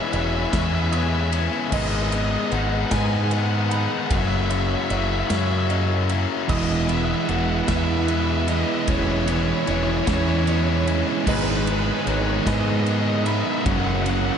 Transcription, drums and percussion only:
0.13 ride
0.53 kick, snare, ride
0.93 ride
1.33 ride
1.72 kick, crash
2.12 ride
2.52 ride
2.91 kick, snare, ride
3.31 ride
3.71 ride
4.11 kick, ride
4.50 ride
4.90 ride
5.30 snare, ride
5.70 ride
6.09 ride
6.49 kick, crash
6.89 ride
7.29 ride
7.68 kick, snare, ride
8.08 ride
8.48 ride
8.88 kick, ride
9.28 ride
9.67 ride
10.07 kick, snare, ride
10.47 ride
10.87 ride
11.27 kick, crash
11.67 ride
12.07 ride
12.47 kick, snare, ride
12.86 ride
13.26 ride
13.66 kick, ride
14.06 ride

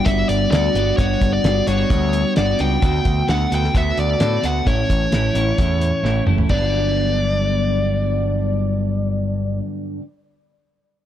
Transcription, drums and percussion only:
0.06 kick, closed hi-hat
0.29 closed hi-hat
0.52 snare, closed hi-hat
0.75 closed hi-hat
0.98 kick, closed hi-hat
1.21 kick, closed hi-hat
1.44 snare, closed hi-hat
1.67 closed hi-hat
1.90 kick, closed hi-hat
2.13 closed hi-hat
2.36 snare, closed hi-hat
2.59 closed hi-hat
2.82 kick, closed hi-hat
3.05 kick, closed hi-hat
3.28 snare, closed hi-hat
3.52 closed hi-hat
3.64 snare
3.75 kick, closed hi-hat
3.98 closed hi-hat
4.20 snare, closed hi-hat
4.44 closed hi-hat
4.67 kick, closed hi-hat
4.90 kick, closed hi-hat
5.12 snare, closed hi-hat
5.35 closed hi-hat
5.58 kick, closed hi-hat
5.81 closed hi-hat
6.05 snare
6.27 mid tom
6.38 floor tom
6.49 kick, crash

